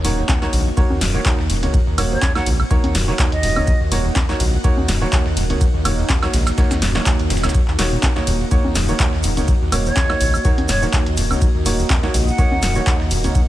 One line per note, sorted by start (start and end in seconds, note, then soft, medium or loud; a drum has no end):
0.00 13.48 A#3 medium
0.00 13.48 D#4 medium
0.00 13.48 F#4 medium
0.00 0.76 C#5 medium
0.04 0.22 D#1 loud
0.04 0.12 F#2 medium
0.04 0.39 A#3 medium
0.04 0.39 D#4 medium
0.04 0.39 F#4 medium
0.04 0.39 C#5 loud
0.04 snare soft
0.04 open hi-hat loud
0.04 shaker medium
0.18 0.24 D#2 medium
0.29 0.40 D#2 medium
0.29 kick loud
0.29 snare loud
0.29 clap loud
0.29 high conga medium
0.29 shaker medium
0.42 0.48 D#2 medium
0.42 0.63 A#3 medium
0.42 0.63 D#4 medium
0.42 0.63 F#4 medium
0.42 0.63 C#5 medium
0.42 snare soft
0.53 0.71 A#1 loud
0.53 0.64 C#2 medium
0.53 open hi-hat medium
0.53 shaker medium
0.66 0.70 C#2 medium
0.77 0.84 D#2 loud
0.77 0.99 A#3 medium
0.77 0.99 D#4 medium
0.77 0.99 F#4 medium
0.77 0.99 C#5 loud
0.77 8.50 F#5 medium
0.77 kick loud
0.77 ride medium
0.77 shaker medium
0.90 1.03 D#2 loud
0.90 high conga medium
1.01 1.19 D#1 loud
1.01 1.16 F#2 medium
1.01 snare medium
1.01 open hi-hat loud
1.01 ride medium
1.01 shaker medium
1.14 1.21 F#3 loud
1.14 1.35 A#3 medium
1.14 1.35 D#4 medium
1.14 1.35 F#4 medium
1.14 1.35 C#5 loud
1.25 1.36 D#2 medium
1.25 kick loud
1.25 snare loud
1.25 clap loud
1.25 ride medium
1.25 shaker medium
1.39 1.51 D#2 loud
1.39 snare medium
1.50 1.68 D#1 medium
1.50 1.57 F#2 medium
1.50 open hi-hat medium
1.50 ride medium
1.50 shaker medium
1.63 1.76 C#2 medium
1.63 1.75 A#3 medium
1.63 1.75 D#4 medium
1.63 1.75 F#4 medium
1.63 1.75 C#5 medium
1.63 closed hi-hat soft
1.63 high conga soft
1.74 1.81 E2 loud
1.74 kick loud
1.74 ride medium
1.74 shaker medium
1.87 2.00 D#2 loud
1.98 2.16 D#1 loud
1.98 2.05 F#2 medium
1.98 2.20 A#3 loud
1.98 2.20 D#4 medium
1.98 2.20 F#4 medium
1.98 2.20 C#5 loud
1.98 open hi-hat loud
1.98 ride medium
1.98 high woodblock medium
1.98 shaker medium
2.11 2.17 D#2 medium
2.11 2.35 C#5 medium
2.22 2.33 D#2 medium
2.22 kick loud
2.22 snare loud
2.22 clap loud
2.22 ride medium
2.22 high conga medium
2.22 shaker medium
2.35 2.41 D#2 medium
2.35 2.48 A#3 medium
2.35 2.48 D#4 medium
2.35 2.48 F#4 medium
2.35 2.48 C#5 loud
2.35 2.48 F#5 medium
2.35 snare soft
2.35 high woodblock medium
2.46 2.64 A#1 loud
2.46 2.57 C#2 medium
2.46 open hi-hat medium
2.46 ride medium
2.46 shaker medium
2.60 2.63 C#2 medium
2.60 high woodblock medium
2.71 2.78 D#2 loud
2.71 2.92 A#3 medium
2.71 2.92 D#4 medium
2.71 2.92 F#4 medium
2.71 2.92 C#5 loud
2.71 kick loud
2.71 ride medium
2.71 shaker medium
2.84 2.96 D#2 loud
2.84 closed hi-hat soft
2.84 high conga medium
2.95 3.13 D#1 loud
2.95 3.09 F#2 medium
2.95 snare medium
2.95 open hi-hat loud
2.95 ride medium
2.95 shaker medium
3.08 3.14 F#3 loud
3.08 3.29 A#3 medium
3.08 3.29 D#4 medium
3.08 3.29 F#4 medium
3.08 3.29 C#5 loud
3.08 snare soft
3.19 3.30 D#2 medium
3.19 kick loud
3.19 snare loud
3.19 clap loud
3.19 ride medium
3.19 shaker medium
3.32 3.45 D#2 loud
3.32 3.81 D#5 loud
3.32 closed hi-hat soft
3.43 3.61 D#1 medium
3.43 3.50 F#2 medium
3.43 snare soft
3.43 open hi-hat medium
3.43 ride medium
3.43 shaker medium
3.56 3.69 C#2 medium
3.56 3.69 A#3 medium
3.56 3.69 D#4 medium
3.56 3.69 F#4 medium
3.56 3.69 C#5 medium
3.56 high conga soft
3.56 high woodblock medium
3.67 3.75 E2 loud
3.67 kick loud
3.67 ride medium
3.67 shaker medium
3.81 3.93 D#2 loud
3.92 4.09 D#1 loud
3.92 3.99 F#2 medium
3.92 4.13 A#3 loud
3.92 4.13 D#4 medium
3.92 4.13 F#4 medium
3.92 4.13 C#5 loud
3.92 snare soft
3.92 open hi-hat loud
3.92 ride medium
3.92 shaker medium
4.05 4.11 D#2 medium
4.16 4.27 D#2 medium
4.16 kick loud
4.16 snare loud
4.16 clap loud
4.16 ride medium
4.16 high conga medium
4.16 shaker medium
4.29 4.35 D#2 medium
4.29 4.41 A#3 medium
4.29 4.41 D#4 medium
4.29 4.41 F#4 medium
4.29 4.41 C#5 loud
4.29 snare soft
4.40 4.58 A#1 loud
4.40 4.51 C#2 medium
4.40 open hi-hat medium
4.40 ride medium
4.40 shaker medium
4.53 4.57 C#2 medium
4.64 4.71 D#2 loud
4.64 4.86 A#3 loud
4.64 4.86 D#4 medium
4.64 4.86 F#4 medium
4.64 4.86 C#5 loud
4.64 kick loud
4.64 ride medium
4.64 shaker medium
4.77 4.90 D#2 loud
4.77 high conga medium
4.88 5.06 D#1 loud
4.88 5.03 F#2 medium
4.88 snare medium
4.88 open hi-hat loud
4.88 ride medium
4.88 shaker medium
5.02 5.08 F#3 loud
5.02 5.23 A#3 medium
5.02 5.23 D#4 medium
5.02 5.23 F#4 medium
5.02 5.23 C#5 loud
5.13 5.23 D#2 medium
5.13 kick loud
5.13 snare loud
5.13 clap loud
5.13 ride medium
5.13 shaker medium
5.26 5.38 D#2 loud
5.26 snare medium
5.37 5.55 D#1 medium
5.37 5.44 F#2 medium
5.37 open hi-hat medium
5.37 ride medium
5.37 shaker medium
5.50 5.62 C#2 medium
5.50 5.62 A#3 medium
5.50 5.62 D#4 medium
5.50 5.62 F#4 medium
5.50 5.62 C#5 medium
5.50 closed hi-hat soft
5.50 high conga soft
5.61 5.68 E2 loud
5.61 kick loud
5.61 ride medium
5.61 shaker medium
5.74 5.87 D#2 loud
5.85 6.03 D#1 loud
5.85 5.92 F#2 medium
5.85 6.07 A#3 loud
5.85 6.07 D#4 medium
5.85 6.07 F#4 medium
5.85 6.07 C#5 loud
5.85 open hi-hat loud
5.85 ride medium
5.85 high woodblock medium
5.85 shaker medium
5.98 6.04 D#2 medium
6.09 6.20 D#2 medium
6.09 kick loud
6.09 snare loud
6.09 clap loud
6.09 ride medium
6.09 high conga medium
6.09 shaker medium
6.22 6.29 D#2 medium
6.22 6.35 A#3 medium
6.22 6.35 D#4 medium
6.22 6.35 F#4 medium
6.22 6.35 C#5 loud
6.22 snare soft
6.22 high woodblock medium
6.33 6.51 A#1 loud
6.33 6.44 C#2 medium
6.33 snare loud
6.33 open hi-hat medium
6.33 ride medium
6.33 shaker medium
6.47 6.50 C#2 medium
6.47 snare loud
6.47 high woodblock medium
6.47 shaker medium
6.58 6.65 D#2 loud
6.58 6.79 A#3 medium
6.58 6.79 D#4 medium
6.58 6.79 F#4 medium
6.58 6.79 C#5 loud
6.58 kick loud
6.58 snare loud
6.58 ride medium
6.58 shaker medium
6.71 6.83 D#2 loud
6.71 snare loud
6.71 high conga medium
6.71 shaker medium
6.82 7.00 D#1 loud
6.82 6.96 F#2 medium
6.82 snare medium
6.82 open hi-hat loud
6.82 ride medium
6.95 7.01 F#3 loud
6.95 7.16 A#3 loud
6.95 7.16 D#4 medium
6.95 7.16 F#4 medium
6.95 7.16 C#5 loud
6.95 snare medium
7.06 7.17 D#2 medium
7.06 kick loud
7.06 snare loud
7.06 clap loud
7.06 ride medium
7.06 shaker medium
7.19 7.32 D#2 loud
7.19 closed hi-hat soft
7.30 7.48 D#1 medium
7.30 7.38 F#2 medium
7.30 snare medium
7.30 open hi-hat medium
7.30 ride medium
7.30 shaker medium
7.37 snare medium
7.37 shaker medium
7.43 7.56 C#2 medium
7.43 7.56 A#3 medium
7.43 7.56 D#4 medium
7.43 7.56 F#4 medium
7.43 7.56 C#5 medium
7.43 snare soft
7.43 snare medium
7.43 high conga soft
7.43 high woodblock medium
7.43 shaker medium
7.49 snare medium
7.49 shaker medium
7.54 7.62 E2 loud
7.54 kick loud
7.54 ride medium
7.54 shaker medium
7.68 7.77 D#2 loud
7.68 clap soft
7.79 7.97 D#1 medium
7.79 7.83 A#2 medium
7.79 8.13 A#3 medium
7.79 8.13 D#4 medium
7.79 8.13 F#4 medium
7.79 8.13 C#5 loud
7.79 snare medium
7.79 snare soft
7.79 open hi-hat loud
7.79 ride medium
7.79 shaker medium
7.92 7.98 A#2 medium
8.03 8.07 D#2 medium
8.03 kick loud
8.03 snare loud
8.03 clap loud
8.03 ride medium
8.03 high conga medium
8.03 shaker medium
8.16 8.22 D#2 medium
8.16 8.37 A#3 medium
8.16 8.37 D#4 medium
8.16 8.37 F#4 medium
8.16 8.37 C#5 medium
8.16 snare soft
8.27 8.45 D#1 medium
8.27 8.31 D#2 loud
8.27 open hi-hat medium
8.27 ride medium
8.27 shaker medium
8.40 8.44 D#1 medium
8.51 8.58 D#2 loud
8.51 8.73 A#3 medium
8.51 8.73 D#4 medium
8.51 8.73 F#4 medium
8.51 8.73 C#5 loud
8.51 13.48 D#5 medium
8.51 kick loud
8.51 ride medium
8.51 shaker soft
8.51 shaker medium
8.64 8.77 D#2 medium
8.64 high conga medium
8.75 8.93 D#1 loud
8.75 8.90 F#2 medium
8.75 snare medium
8.75 open hi-hat loud
8.75 ride medium
8.75 shaker medium
8.88 8.95 F#3 loud
8.88 9.10 A#3 loud
8.88 9.10 D#4 medium
8.88 9.10 F#4 medium
8.88 9.10 C#5 loud
8.88 shaker medium
8.99 9.11 D#2 medium
8.99 kick loud
8.99 snare loud
8.99 clap loud
8.99 ride medium
8.99 shaker soft
8.99 shaker medium
9.13 9.25 D#2 loud
9.13 snare medium
9.23 9.42 D#1 medium
9.23 9.31 F#2 medium
9.23 open hi-hat medium
9.23 ride medium
9.23 shaker loud
9.23 shaker medium
9.37 9.49 C#2 medium
9.37 9.49 A#3 medium
9.37 9.49 D#4 medium
9.37 9.49 F#4 medium
9.37 9.49 C#5 medium
9.37 closed hi-hat soft
9.37 high conga soft
9.37 shaker medium
9.48 9.55 E2 loud
9.48 kick loud
9.48 ride medium
9.48 shaker soft
9.48 shaker medium
9.61 9.74 D#2 loud
9.72 9.90 D#1 loud
9.72 9.79 F#2 medium
9.72 9.94 A#3 loud
9.72 9.94 D#4 medium
9.72 9.94 F#4 medium
9.72 9.94 C#5 loud
9.72 open hi-hat loud
9.72 ride medium
9.72 high woodblock medium
9.72 shaker medium
9.85 9.91 D#2 medium
9.85 10.53 C#5 loud
9.85 shaker soft
9.96 10.07 D#2 medium
9.96 kick loud
9.96 snare loud
9.96 clap loud
9.96 ride medium
9.96 high conga medium
9.96 shaker medium
9.96 shaker soft
10.09 10.16 D#2 medium
10.09 10.22 A#3 medium
10.09 10.22 D#4 medium
10.09 10.22 F#4 medium
10.09 10.22 C#5 loud
10.09 snare soft
10.09 high woodblock medium
10.21 10.39 A#1 loud
10.21 10.31 C#2 medium
10.21 open hi-hat medium
10.21 ride medium
10.21 shaker medium
10.34 10.37 C#2 medium
10.34 high woodblock medium
10.34 shaker medium
10.45 10.52 D#2 loud
10.45 10.66 A#3 medium
10.45 10.66 D#4 medium
10.45 10.66 F#4 medium
10.45 10.66 C#5 loud
10.45 kick loud
10.45 ride medium
10.45 shaker soft
10.45 shaker medium
10.58 10.71 D#2 medium
10.58 closed hi-hat soft
10.58 high conga medium
10.68 10.87 D#1 loud
10.68 10.84 F#2 medium
10.68 10.83 C#5 loud
10.68 snare medium
10.68 open hi-hat loud
10.68 ride medium
10.68 shaker loud
10.68 shaker medium
10.82 10.88 F#3 loud
10.82 11.03 A#3 medium
10.82 11.03 D#4 medium
10.82 11.03 F#4 medium
10.82 11.03 C#5 loud
10.82 snare soft
10.82 shaker medium
10.93 11.04 D#2 medium
10.93 kick loud
10.93 snare loud
10.93 clap loud
10.93 ride medium
10.93 shaker soft
10.93 shaker medium
11.06 11.19 D#2 loud
11.06 closed hi-hat soft
11.17 11.35 D#1 medium
11.17 11.25 F#2 medium
11.17 snare soft
11.17 open hi-hat loud
11.17 ride medium
11.17 shaker loud
11.17 shaker medium
11.30 11.43 C#2 medium
11.30 11.43 A#3 medium
11.30 11.43 D#4 medium
11.30 11.43 F#4 medium
11.30 11.43 C#5 medium
11.30 high conga soft
11.30 high woodblock medium
11.30 shaker medium
11.41 11.49 E2 loud
11.41 kick loud
11.41 ride medium
11.41 shaker soft
11.41 shaker medium
11.55 11.67 D#2 loud
11.66 11.84 D#1 loud
11.66 11.73 F#2 medium
11.66 11.87 A#3 loud
11.66 11.87 D#4 medium
11.66 11.87 F#4 medium
11.66 11.87 C#5 loud
11.66 snare soft
11.66 open hi-hat loud
11.66 ride medium
11.66 shaker loud
11.66 shaker medium
11.79 11.85 D#2 medium
11.79 shaker medium
11.90 12.01 D#2 medium
11.90 kick loud
11.90 snare loud
11.90 clap loud
11.90 ride medium
11.90 high conga medium
11.90 shaker soft
11.90 shaker loud
12.03 12.09 D#2 medium
12.03 12.15 A#3 medium
12.03 12.15 D#4 medium
12.03 12.15 F#4 medium
12.03 12.15 C#5 loud
12.03 snare soft
12.14 12.32 A#1 loud
12.14 12.25 C#2 medium
12.14 open hi-hat medium
12.14 ride medium
12.14 shaker medium
12.27 12.31 C#2 medium
12.27 12.95 F#5 loud
12.27 shaker soft
12.38 12.46 D#2 loud
12.38 12.60 A#3 medium
12.38 12.60 D#4 medium
12.38 12.60 F#4 medium
12.38 12.60 C#5 loud
12.38 kick loud
12.38 ride medium
12.38 shaker medium
12.38 shaker soft
12.51 12.64 D#2 medium
12.51 high conga medium
12.62 12.80 D#1 loud
12.62 12.77 F#2 medium
12.62 snare medium
12.62 open hi-hat loud
12.62 ride medium
12.62 shaker loud
12.62 shaker medium
12.75 12.82 F#3 loud
12.75 12.97 A#3 medium
12.75 12.97 D#4 medium
12.75 12.97 F#4 medium
12.75 12.97 C#5 loud
12.75 shaker medium
12.87 12.98 D#2 medium
12.87 kick loud
12.87 snare loud
12.87 clap loud
12.87 ride medium
12.87 shaker medium
12.87 shaker soft
13.00 13.12 D#2 loud
13.00 snare medium
13.11 13.29 D#1 medium
13.11 13.18 F#2 medium
13.11 open hi-hat loud
13.11 ride medium
13.11 shaker medium
13.24 13.37 C#2 medium
13.24 13.36 A#3 medium
13.24 13.36 D#4 medium
13.24 13.36 F#4 medium
13.24 13.36 C#5 medium
13.24 closed hi-hat soft
13.24 high conga soft
13.24 shaker medium
13.35 13.42 E2 loud
13.35 kick loud
13.35 ride medium
13.35 shaker soft
13.35 shaker medium